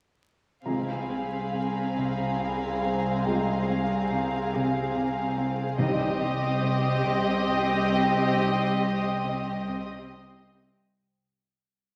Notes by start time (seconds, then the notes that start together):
0.65 C2 C3 G#3 C4 F4 G#4 F5 G#5 A#5 B5
1.09 C4
1.53 C3 A#5
1.96 C3
2.40 C3
2.82 C4
2.91 C6
3.25 C3 G#3 F4 G#4 G5
3.68 C4
4.10 C3
4.52 C3
4.94 C3
5.37 C4
5.78 C2 C3 G3 C4 D#4 G4 D#5 C6 D6
6.21 C4
6.63 C3
7.06 C3
7.48 C3 D#6
7.92 C4
8.35 C3 G3 D#4 C5
8.80 C4
9.23 C3 D#5
9.68 C3
10.11 C3
10.55 C4